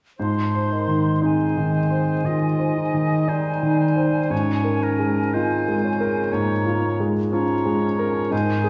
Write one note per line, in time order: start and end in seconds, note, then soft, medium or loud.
0.19 2.22 G#2 soft
0.19 0.73 F3 soft
0.19 1.25 D#4 soft
0.19 1.19 C5 soft
0.19 1.21 C6 soft
0.54 1.10 C5 soft
0.72 1.23 D#3 soft
0.88 1.44 D#3 soft
1.22 3.31 G#3 soft
1.22 2.28 C4 soft
1.22 1.78 D#4 soft
1.22 2.27 C5 soft
1.22 1.74 G#5 soft
1.57 2.12 D#3 soft
1.75 6.36 G#5 soft
1.91 2.46 C5 soft
2.24 2.80 D#3 soft
2.24 2.78 F4 soft
2.24 3.30 D#5 soft
2.59 3.15 C5 soft
2.77 4.31 D#4 soft
2.94 3.49 D#3 soft
3.28 4.31 G3 soft
3.28 3.83 D#4 soft
3.28 3.79 C5 soft
3.63 4.18 D#3 soft
3.79 4.33 C5 soft
3.96 4.31 C5 soft
4.30 6.29 G#2 soft
4.30 5.32 F3 soft
4.30 5.35 C#4 soft
4.30 4.84 C#5 soft
4.64 5.20 A#4 soft
4.83 5.35 A#4 soft
4.99 5.54 G#3 soft
5.33 5.83 D#3 soft
5.33 6.33 C4 soft
5.33 5.88 F4 soft
5.33 6.35 C5 soft
5.68 6.21 G#3 soft
5.84 7.03 C#3 soft
6.00 6.53 A#4 soft
6.32 8.28 G#2 soft
6.32 6.82 A#3 soft
6.32 7.05 C#5 soft
6.32 7.06 A#5 soft
6.66 7.19 F4 soft
6.81 7.14 D#4 soft
7.00 7.53 G#3 soft
7.31 8.33 F3 soft
7.31 7.78 C#4 soft
7.31 7.86 F4 soft
7.31 8.28 C#5 soft
7.31 8.33 A#5 soft
7.66 8.18 G#3 soft
7.81 8.32 C#4 soft
7.99 8.32 A#4 soft
8.30 8.69 G#2 soft
8.30 8.69 D#3 soft
8.30 8.69 D#4 soft
8.30 8.69 C5 soft
8.30 8.69 G#5 soft
8.64 8.69 G#4 soft